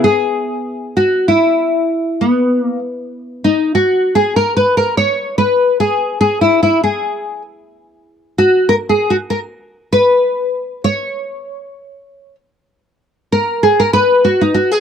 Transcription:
nylon-string guitar
0.04 G#4
0.97 F#4
1.28 E4
2.21 B3
2.62 A#3
3.44 D#4
3.75 F#4
4.15 G#4
4.36 A#4
4.56 B4
4.77 A#4
4.97 C#5
5.38 B4
5.80 G#4
6.21 G#4
6.41 E4
6.63 E4
6.83 G#4
8.38 F#4
8.69 A#4
8.89 G#4
9.10 F#4
9.30 A#4
9.92 B4
10.84 C#5
13.32 A#4
13.63 G#4
13.80 A#4
13.93 B4
14.24 F#4
14.41 D#4
14.54 F#4
14.71 G#4

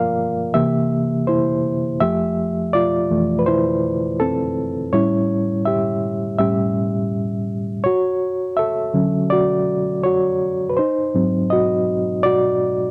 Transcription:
reed electric piano
Already playing: G2 F3 A#3 F4 A#4 D5 F5
0.54 C3 E3 A#3 G4 E5
1.27 E4 C5
2.01 F2 F3 A3 G4 E5
2.73 F4 D5
3.10 F2 E3 A3
3.39 B4
3.46 E4 C5
4.20 C4 A4
4.93 A2 G3 C#4 E4 C#5
5.65 G4 E5
6.39 A2 G3 C#4 G4 E5
7.84 F#4 C#5
8.57 A4 E5
8.94 D3 F#3 C#4
9.30 F#4 D5
10.04 F#4 C#5
10.70 B4
10.77 D#4 C5
11.14 G#2 F#3 C4
11.50 F#4 D#5
12.23 F#4 D5

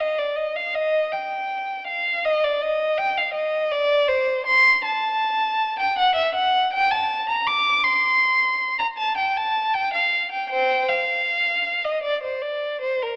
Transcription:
violin
0.00 D#5
0.19 D5
0.36 D#5
0.56 F5
0.75 D#5
1.12 G5
1.87 F5
2.25 D#5
2.44 D5
2.62 D#5
2.98 G5
3.18 F5
3.34 D#5
3.72 D5
4.08 C5
4.46 C6
4.85 A5
5.79 G5
5.99 F#5
6.15 E5
6.35 F#5
6.73 G5
6.91 A5
7.30 A#5
7.47 D6
7.84 C6
8.79 A#5
8.98 A5
9.17 G5
9.37 A5
9.74 G5
9.94 F5
10.32 G5
10.50 C5 G5
10.88 F5
11.84 D#5
12.03 D5
12.23 C5
12.42 D5
12.81 C5
13.02 A#4

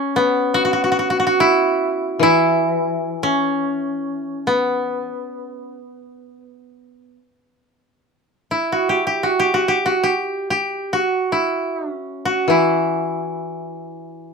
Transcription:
koto
Already playing: C#4
0.16 B3
0.54 F#4
0.65 F#4
0.73 F#4
0.84 F#4
0.92 F#4
0.99 F#4
1.10 F#4
1.20 F#4
1.27 F#4
1.40 E4
2.19 E3 E4
3.23 C#4
4.47 B3
8.51 E4
8.72 F#4
8.89 G4
9.07 G4
9.23 F#4
9.40 G4
9.54 F#4
9.68 G4
9.86 F#4
10.03 G4
10.50 G4
10.93 F#4
11.32 E4
11.91 C#4
12.25 F#4
12.48 E3 E4

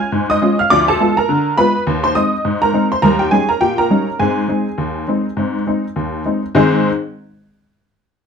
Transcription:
honky-tonk piano
Already playing: G#5 G#6
0.12 G#2
0.30 D#5 D#6
0.42 G#3 C#4 F4
0.59 F5 F6
0.70 D2 F3 D5 D6
0.88 A4 A5
1.00 G#3 B3 F4
1.17 A#4 A#5
1.29 D3
1.58 G#3 B3 F4 B4 B5
1.87 D#2
2.04 C5 C6
2.15 G#3 C4 D#4 D#5 D#6
2.45 G#2
2.62 A#4 A#5
2.73 G#3 C4 D#4
2.92 C5 C6
3.02 D#2 G3 A#4 A#5
3.19 G4 G5
3.31 G3 C#4 D#4 G#4 G#5
3.49 A#4 A#5
3.61 A#2 G4 G5
3.78 A#4 A#5
3.90 G3 C#4 D#4
4.19 G#2 C4 G#4 G#5
4.48 G#3 C4 D#4
4.78 D#2
5.08 G#3 C4 D#4
5.37 G#2 C4
5.67 G#3 C4 D#4
5.96 D#2
6.25 G#3 C4 D#4
6.55 G#2 D#3 C4 D#4 G#4 C5

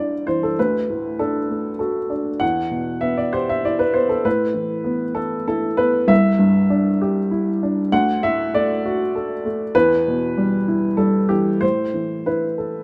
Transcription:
upright piano
Already playing: C2 G2 D4 E4 C5 D5
0.27 E3 C5
0.43 A4
0.59 D2 B4
0.90 A2
1.19 D4 A4
1.50 A3
1.79 F#4 A4
2.10 D4
2.40 E2 F#5
2.71 B2
3.01 B3 E5
3.17 D5
3.33 G4 C5
3.49 E5
3.65 E4 D5
3.79 B4
3.94 B3 C5
4.09 A4
4.25 A2 B4
4.54 E3
4.84 B3
5.15 A3 A4
5.48 E4 A4
5.77 B3 B4
6.08 C2 E5
6.39 G2
6.70 D4
7.02 G4
7.31 E4
7.63 D4
7.92 D2 F#5
8.23 A2 E5
8.54 A3 D5
8.86 F#4
9.15 A4
9.45 A3
9.75 E2 B4
10.08 B2
10.37 G3
10.68 E4
10.97 G3 A4
11.29 E3 G4
11.61 A2 C5
11.94 E3
12.26 E4 B4
12.58 A4

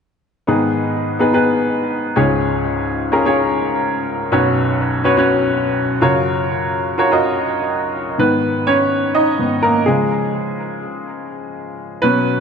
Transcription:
upright piano
0.47 G#2 D#3 B3 D#4 G#4 B4
1.19 B3 D#4 G#4 B4
1.33 B3 D#4 G#4 B4
2.16 C#2 G#2 C#4 F4 G#4 C#5
3.12 C#4 F4 G#4 A#4
3.25 C#4 F4 G#4 C#5
4.32 B1 F#2 C#4 F#4 B4 C#5
5.04 C#4 F#4 B4 C#5
5.17 C#4 F#4 B4 C#5
6.01 F#2 C#3 F4 F#4 A#4 C#5
6.98 F4 F#4 A#4 C#5
7.11 F4 F#4 A#4 D#5
8.18 G#2 D#3 B3 B4
8.67 C#4 C#5
9.15 D#4 D#5
9.39 G#2 D#3 B3
9.63 A#3 A#4
9.86 C#3 F3 G#3 G#4
12.02 B2 F#3 B3 C#4 B4

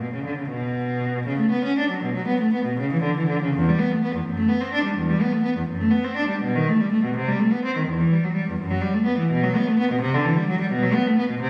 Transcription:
cello
0.01 B2
0.13 C#3
0.25 D3
0.38 C#3
0.50 B2
1.27 C#3
1.39 A3
1.51 B3
1.65 C#4
1.78 D4
1.90 F#3
2.03 B2
2.15 F#3
2.27 B3
2.40 A3
2.53 B3
2.65 B2
2.79 C#3
2.93 E3
3.02 D3
3.17 E3
3.29 D3
3.42 C#3
3.56 E2
3.69 G3
3.79 B3
3.92 A3
4.04 B3
4.15 E2
4.25 F#2
4.37 A3
4.49 B3
4.61 C4
4.74 D4
4.84 G3
4.97 E2
5.09 G3
5.21 B3
5.32 A3
5.43 B3
5.57 E2
5.68 F#2
5.81 A3
5.91 B3
6.04 C4
6.17 D4
6.28 G3
6.42 B2
6.55 D#3
6.68 A3
6.80 G3
6.92 A3
7.04 B2
7.16 C3
7.28 G3
7.39 A3
7.52 B3
7.65 C4
7.77 D#3
7.87 E2
8.00 E3
8.12 G3
8.24 F#3
8.35 G3
8.49 E2
8.60 F#2
8.71 F#3
8.81 G3
8.94 A3
9.05 B3
9.18 E3
9.31 B2
9.43 F#3
9.56 B3
9.67 A3
9.79 B3
9.91 B2
10.01 C3
10.14 D3
10.25 E3
10.37 G3
10.50 F#3
10.61 G3
10.72 B2
10.83 F#3
10.94 B3
11.07 A3
11.18 B3
11.30 B2
11.41 C3

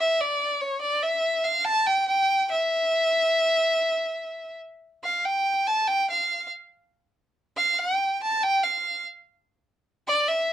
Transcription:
violin
0.00 E5
0.20 D5
0.61 C#5
0.81 D5
1.03 E5
1.44 F5
1.65 A5
1.86 G5
2.08 G5
2.51 E5
5.04 F5
5.25 G5
5.67 A5
5.87 G5
6.10 F5
7.57 F5
7.79 G5
8.23 A5
8.43 G5
8.64 F5
10.07 D5
10.28 E5

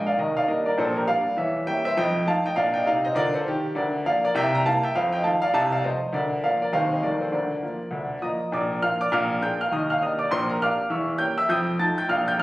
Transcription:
upright piano
0.07 D5 F5
0.18 D#2 D#3 A#4 D#5
0.37 D5 F5
0.48 G3 A#3 D4 A#4 D#5
0.66 A#4 D5
0.77 A#1 A#2 A4 C5
0.97 G4 A#4
1.07 G3 A#3 D4 D5 F5
1.37 E2 E3 C#5 E5
1.66 G3 A#3 C#4 E5 G5
1.85 C5 E5
1.97 F2 F3 D#5 G5
2.26 F3 A3 D#4 F5 A5
2.46 D#5 G5
2.56 A#2 D4 D5 F5
2.74 D#5 G5
2.86 C3 D#4 D5 F5
3.05 C5 D#5
3.15 D3 F4 A#4 D5
3.34 A4 C5
3.46 D#3 G4
3.75 D2 D3 A#4 D5
4.05 F3 A#3 D4 D5 F5
4.25 A#4 D5
4.35 C2 C3 E5 G5
4.55 G5 A#5
4.65 G3 A#3 E4 F5 A5
4.83 E5 G5
4.94 F2 F3 C5 F5
5.12 D#5 G5
5.23 D#3 A3 F4 F5 A5
5.42 D5 F5
5.53 C2 C3 F5 A5
5.72 D5 F5
5.84 F3 A3 F4 C5 D#5
6.13 D2 D3 A#4 D5
6.43 F3 A#3 F4 D5 F5
6.62 A#4 D5
6.72 D#2 D#3 G3 C4 D#4 C5 F5
6.92 C5 D#5
7.02 D#2 D#3 F3 A3 F4 A#4 D5
7.21 A4 C5
7.32 D2 D3 A#4 D5
7.62 F3 A#3 F4
7.91 D2 D3
8.22 F3 A#3 F4 D#5 A#5 D#6
8.52 A#1 A#2 D5 A#5 D6
8.82 F3 A#3 F4 F5 F6
9.01 D5 D6
9.12 A#1 A#2 F5 D6 F6
9.42 A#3 D4 G#4 G5 G6
9.61 F5 F6
9.72 D#2 D#3 D#5 D#6
9.90 F5 F6
10.01 A#3 D4 G4 D#5 D#6
10.19 D5 D6
10.31 A#1 A#2 C5 C6
10.49 A#4 A#5
10.61 A#3 D4 G4 F5 D6 F6
10.90 E2 E3 E5 C#6 E6
11.18 A#3 C#4 G4 G5 G6
11.38 E5 E6
11.49 F2 F3 G5 D#6 G6
11.79 A3 D#4 F4 A5 A6
11.98 G5 G6
12.09 A#1 A#2 F5 F6
12.28 G5 G6
12.38 F1 F2 F6

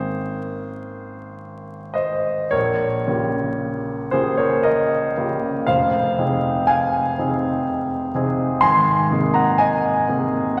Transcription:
grand piano
Already playing: G#1 D#3 A#3 C4 G#4 C5
1.94 C5 D#5
2.51 A#1 A#4 C#5
3.07 C#3 A#3 F4 G4
4.11 C#3 A#3 F4 G4 G#4 C5
4.37 A#4 C#5
4.63 A#4 D#5
5.17 C#3 A#3 F4 G4
5.67 F1 C5 F5
6.18 C3 C4 D#4 G#4
6.67 F5 G#5
7.18 C3 C4 D#4 G#4
8.14 C3 C4 D#4 G#4
8.61 G#1 G#5 C6
9.10 C3 A#3 D#4 G#4
9.34 F#5 A#5
9.58 D#5 G#5
10.09 C3 A#3 D#4 G#4

